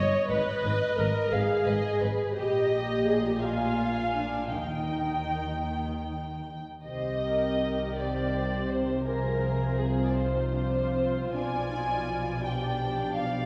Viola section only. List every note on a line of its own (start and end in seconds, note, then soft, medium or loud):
0.00 0.31 C#5 medium
0.30 0.97 B4 loud
0.98 1.33 A#4 medium
1.32 2.36 G#4 loud
2.37 3.06 G4 medium
3.07 3.25 G#4 medium
3.25 3.43 G4 medium
3.43 4.17 F4 medium
4.16 4.55 D4 medium
4.55 6.44 D#4 medium
6.86 9.02 D#3 soft
6.86 7.94 G4 soft
7.97 9.04 G4 soft
9.07 13.46 F3 soft
9.07 10.15 F4 soft
10.14 10.54 D#4 soft
10.54 10.95 D4 soft
10.96 11.35 C4 soft
11.35 11.73 D4 soft
11.72 12.09 D#4 soft
12.08 12.45 F4 soft
12.45 13.46 G4 soft